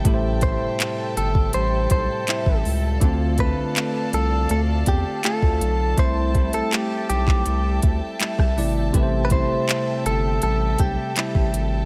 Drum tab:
HH |x-x-x-x-x-x-x-o-|x-x-x-x-x-x-x-x-|x-xxx-x-x-x-x-o-|x-x-x-x-x-x-x-x-|
CP |----x-------x---|----x-------x---|----x--x----x---|----x-------x---|
SD |----------------|----------------|---r---------r--|----------------|
BD |o-o----o--o--o--|o-o-------o--o--|o-o----o--o--o--|o-o-------o--o--|